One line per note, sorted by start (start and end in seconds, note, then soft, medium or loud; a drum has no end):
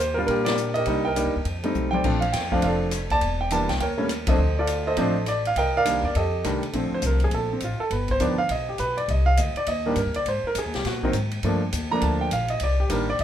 0.00 0.26 D#2 medium
0.00 0.14 G4 medium
0.00 0.17 C5 medium
0.14 0.56 G3 medium
0.14 0.56 A#3 medium
0.14 0.56 F4 medium
0.14 0.19 A#4 medium
0.19 0.28 D4 medium
0.27 0.84 A#2 medium
0.27 0.84 D4 medium
0.27 0.47 G4 medium
0.27 0.46 A#4 medium
0.27 kick soft
0.27 ride medium
0.45 0.76 G4 medium
0.45 0.76 A#4 medium
0.45 0.76 D5 medium
0.45 snare medium
0.45 ride medium
0.57 hi-hat pedal medium
0.74 1.31 G4 medium
0.74 1.06 A#4 medium
0.74 1.02 D#5 loud
0.74 ride soft
0.86 1.23 C2 medium
0.86 1.03 G3 medium
0.86 1.03 A#3 medium
0.86 1.04 D4 medium
0.86 1.04 D#4 medium
0.86 kick soft
0.86 ride medium
1.05 1.44 A#4 medium
1.05 1.90 D#5 medium
1.05 1.89 G5 medium
1.16 1.32 G3 medium
1.16 1.33 A#3 medium
1.16 1.33 D4 medium
1.16 1.33 D#4 medium
1.16 hi-hat pedal medium
1.16 ride medium
1.25 1.35 D2 medium
1.36 1.44 D#2 medium
1.45 1.73 F2 medium
1.45 kick soft
1.45 ride medium
1.63 2.02 G3 medium
1.63 2.02 A3 medium
1.63 2.03 C4 medium
1.63 2.03 D#4 medium
1.63 ride soft
1.75 2.02 B1 medium
1.75 hi-hat pedal soft
1.75 high tom soft
1.91 2.48 C5 medium
1.91 2.48 D5 medium
1.91 2.19 G5 medium
1.91 high tom medium
2.04 2.31 A#1 medium
2.04 2.21 F3 medium
2.04 2.21 A3 medium
2.04 2.21 C4 medium
2.04 2.21 D4 medium
2.04 kick medium
2.04 crash medium
2.21 2.33 F5 medium
2.21 ride soft
2.33 2.61 F2 medium
2.33 2.52 G5 medium
2.33 snare soft
2.33 hi-hat pedal medium
2.33 ride medium
2.52 2.90 F3 medium
2.52 2.90 A3 medium
2.52 2.90 C4 medium
2.52 2.91 D4 medium
2.52 2.62 F5 medium
2.52 kick medium
2.62 3.07 F1 medium
2.62 3.19 A4 medium
2.62 3.10 D5 medium
2.62 2.68 F5 medium
2.62 kick soft
2.62 ride medium
2.91 cross-stick soft
2.91 hi-hat pedal medium
2.91 ride medium
3.10 3.20 D#2 medium
3.10 3.66 D5 medium
3.10 3.38 A5 loud
3.10 kick medium
3.10 ride soft
3.21 3.65 E1 medium
3.21 kick soft
3.21 ride medium
3.41 3.52 G5 medium
3.50 3.67 E3 medium
3.50 3.68 G3 medium
3.50 3.68 A#3 medium
3.50 3.68 D4 medium
3.50 3.70 A5 medium
3.50 hi-hat pedal medium
3.50 ride medium
3.69 3.79 C2 medium
3.69 3.74 G5 medium
3.69 snare soft
3.69 ride soft
3.80 4.36 D#2 medium
3.80 4.36 A#4 medium
3.80 4.36 C#5 medium
3.80 3.86 G5 medium
3.80 kick soft
3.80 ride medium
3.98 4.08 G3 medium
3.98 4.08 A3 medium
3.98 4.08 A#3 medium
3.98 4.08 C#4 medium
4.09 cross-stick medium
4.09 hi-hat pedal soft
4.09 ride medium
4.27 4.37 F3 medium
4.27 4.38 A3 medium
4.27 4.38 C4 medium
4.27 4.38 D4 medium
4.27 4.58 A4 medium
4.27 4.84 C5 medium
4.27 4.55 D#5 medium
4.27 kick medium
4.27 ride medium
4.38 4.94 D2 medium
4.59 5.13 F4 medium
4.59 4.86 A4 medium
4.59 4.88 D5 medium
4.67 hi-hat pedal medium
4.67 ride medium
4.87 5.42 A4 medium
4.87 5.42 C5 medium
4.87 5.29 D#5 medium
4.97 5.53 A1 medium
4.97 5.14 F3 medium
4.97 5.14 A3 medium
4.97 5.14 C4 medium
4.97 5.14 D4 medium
4.97 kick soft
4.97 ride medium
5.26 5.46 D5 medium
5.26 cross-stick medium
5.26 hi-hat pedal medium
5.26 ride medium
5.45 5.58 F5 medium
5.45 ride soft
5.56 6.00 C2 medium
5.56 5.76 A#4 medium
5.56 6.12 D#5 medium
5.56 5.76 G5 loud
5.56 kick soft
5.56 ride medium
5.77 6.14 A#4 medium
5.77 6.03 D5 medium
5.77 6.06 F5 loud
5.85 6.02 D#3 medium
5.85 6.02 G3 soft
5.85 6.02 A#3 soft
5.85 6.02 D4 medium
5.85 hi-hat pedal medium
5.85 ride medium
6.03 6.14 E2 medium
6.03 6.15 D5 medium
6.15 6.42 F2 medium
6.15 6.71 G4 medium
6.15 6.70 A4 medium
6.15 6.43 D#5 medium
6.15 kick soft
6.15 ride medium
6.44 6.72 C2 medium
6.44 6.61 D#3 medium
6.44 6.61 G3 medium
6.44 6.61 A3 medium
6.44 6.61 D4 medium
6.44 cross-stick medium
6.44 hi-hat pedal medium
6.44 ride medium
6.63 ride soft
6.73 6.90 A#1 medium
6.73 7.55 D3 medium
6.73 7.55 F3 medium
6.73 7.55 A3 soft
6.73 7.51 C4 medium
6.73 kick soft
6.73 ride medium
6.92 7.04 C5 medium
6.92 muted upright bass stroke soft
7.02 7.31 C2 medium
7.02 kick soft
7.02 hi-hat pedal medium
7.02 ride medium
7.06 7.22 A#4 medium
7.20 ride soft
7.24 7.34 G#4 medium
7.31 7.60 A#1 medium
7.31 7.51 A4 medium
7.31 kick soft
7.31 ride medium
7.53 7.62 C4 medium
7.60 7.78 A1 medium
7.60 7.81 F4 medium
7.60 kick soft
7.60 hi-hat pedal soft
7.60 ride medium
7.79 7.91 A4 medium
7.79 muted upright bass stroke soft
7.90 8.19 G1 medium
7.90 8.09 B4 medium
7.90 kick soft
7.90 ride medium
8.08 8.21 C5 medium
8.08 kick soft
8.08 ride soft
8.20 8.49 D2 medium
8.20 8.37 D#3 medium
8.20 8.37 F3 medium
8.20 8.37 B3 medium
8.20 8.37 D4 medium
8.20 8.39 D5 medium
8.20 kick soft
8.20 hi-hat pedal medium
8.20 ride medium
8.38 8.49 F5 medium
8.49 8.78 B1 medium
8.49 8.68 D#5 medium
8.49 kick soft
8.49 ride medium
8.69 8.79 G4 medium
8.78 9.08 B1 medium
8.78 8.97 B4 medium
8.78 kick soft
8.78 hi-hat pedal soft
8.78 ride medium
8.97 9.08 D5 medium
8.97 ride soft
9.08 9.36 C2 medium
9.08 9.27 D#5 medium
9.08 kick soft
9.08 ride medium
9.26 9.37 F5 loud
9.37 9.54 D2 medium
9.37 9.56 D#5 medium
9.37 kick soft
9.37 hi-hat pedal medium
9.37 ride medium
9.55 9.68 D5 medium
9.55 muted upright bass stroke soft
9.55 ride soft
9.67 9.95 D#2 medium
9.67 9.85 D#5 medium
9.67 kick soft
9.67 ride medium
9.86 9.96 D#3 medium
9.86 9.96 G3 medium
9.86 9.96 A#3 medium
9.86 9.96 D4 medium
9.86 9.97 G4 medium
9.96 10.07 G2 medium
9.96 10.15 A#4 medium
9.96 kick soft
9.96 hi-hat pedal medium
9.96 ride medium
10.06 10.16 D#2 medium
10.14 10.25 C2 medium
10.14 10.26 D5 medium
10.14 ride soft
10.26 10.43 G#2 medium
10.26 10.45 C5 medium
10.26 kick soft
10.26 ride medium
10.43 10.57 A#4 medium
10.43 muted upright bass stroke soft
10.55 10.65 F#2 medium
10.55 10.75 G#4 medium
10.55 kick soft
10.55 hi-hat pedal medium
10.55 ride medium
10.65 10.74 D#2 medium
10.74 10.84 C2 medium
10.74 10.85 G4 medium
10.74 snare soft
10.74 ride soft
10.85 11.13 A#2 medium
10.85 11.03 F#4 medium
10.85 kick soft
10.85 snare soft
10.85 ride medium
11.03 11.13 D#3 medium
11.03 11.13 F#3 medium
11.03 11.13 A#3 medium
11.03 11.14 C4 medium
11.03 11.10 D#4 medium
11.03 kick soft
11.13 11.42 G#2 medium
11.13 hi-hat pedal medium
11.13 ride medium
11.31 ride soft
11.43 11.72 G2 medium
11.43 11.60 F3 medium
11.43 11.60 A3 medium
11.43 11.61 A#3 medium
11.43 11.61 D4 medium
11.43 kick soft
11.43 ride medium
11.73 12.01 D#2 medium
11.73 kick soft
11.73 hi-hat pedal medium
11.73 ride medium
11.91 12.29 F3 medium
11.91 12.30 A3 medium
11.91 12.30 A#3 medium
11.91 12.30 D4 medium
11.91 12.02 A#5 medium
12.02 12.30 D2 medium
12.02 12.20 A5 medium
12.02 kick soft
12.02 ride medium
12.21 12.32 G5 medium
12.31 12.60 A#1 medium
12.31 12.50 F5 medium
12.31 kick soft
12.31 hi-hat pedal medium
12.31 ride medium
12.48 12.61 D#5 medium
12.48 ride soft
12.60 12.89 C2 medium
12.60 12.80 D5 medium
12.60 kick soft
12.60 ride medium
12.80 12.90 G4 medium
12.90 13.18 A1 medium
12.90 13.06 D#3 medium
12.90 13.06 G3 medium
12.90 13.07 A#3 medium
12.90 13.07 D4 medium
12.90 13.09 A#4 medium
12.90 kick soft
12.90 hi-hat pedal medium
12.90 ride medium
13.10 13.20 D5 medium
13.19 13.24 B1 medium
13.19 13.24 D#5 medium
13.19 kick soft
13.19 ride medium